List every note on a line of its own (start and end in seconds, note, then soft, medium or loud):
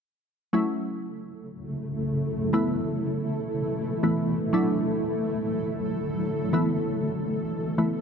0.53 2.52 C#3 medium
0.53 2.49 F#3 medium
0.53 2.51 F#3 medium
0.53 2.49 A3 medium
0.53 2.51 A3 medium
0.53 2.50 C#4 medium
0.53 8.01 E4 medium
0.53 2.50 E4 medium
0.53 4.50 A4 medium
2.53 4.52 B2 medium
2.53 4.00 E3 medium
2.53 4.52 E3 medium
2.53 4.00 A3 medium
2.53 8.01 A3 medium
2.53 4.01 B3 medium
2.53 4.01 E4 medium
4.03 4.53 E3 medium
4.03 4.52 A3 medium
4.03 4.54 B3 medium
4.03 4.53 E4 medium
4.53 6.51 D3 medium
4.53 6.49 F#3 medium
4.53 6.51 F#3 medium
4.53 6.49 A3 medium
4.53 6.50 D4 medium
4.53 6.50 E4 medium
4.53 6.51 A4 medium
6.53 8.01 B2 medium
6.53 7.76 E3 medium
6.53 8.01 E3 medium
6.53 7.76 A3 medium
6.53 7.76 B3 medium
6.53 7.76 E4 medium
6.53 8.01 A4 medium
7.78 8.01 E3 medium
7.78 8.01 A3 medium
7.78 8.01 B3 medium
7.78 8.01 E4 medium